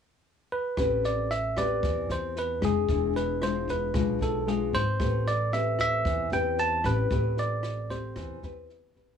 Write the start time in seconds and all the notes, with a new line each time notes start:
0.52 B4
0.77 A1 A3 C4 G4 B4, kick, cross-stick, snare
1.04 D5, snare
1.30 E5, snare
1.57 C4 G4 B4 D5, kick, cross-stick, snare
1.83 E2 E3, kick, snare
2.09 E2 C5, snare
2.36 B4, snare
2.61 F1 G#3 D4 G#4, kick, cross-stick, snare
2.88 E1 E3, kick, snare
3.16 B4, snare
3.42 G#3 D4 F4 C5, cross-stick, snare
3.68 B4, kick, snare
3.94 B1 B2 G#3 D4 F4, kick, cross-stick, snare
4.21 B1 A4, snare
4.46 G#3 D4 F4 G#4, snare
4.73 G#1 C5, kick, snare
4.99 A1 A3 C4 G4 B4, kick, cross-stick, snare
5.26 D5, snare
5.53 C4 G4 B4 E5, snare
5.79 E5, kick, cross-stick, snare
6.05 E2 E3, kick, snare
6.31 E2 C4 G4 B4 G5, snare
6.58 A5, snare
6.84 A1 C4 G4 B4, kick, cross-stick, snare
7.10 A1 A3 C4 G4 B4, kick, snare
7.37 D5, snare
7.63 cross-stick, snare
7.90 C4 G4 C5, kick, snare
8.16 E2 E3, kick, cross-stick, snare
8.42 E2 C4 G4 B4, snare
8.69 snare
8.95 A1 C4 G4 B4, kick, snare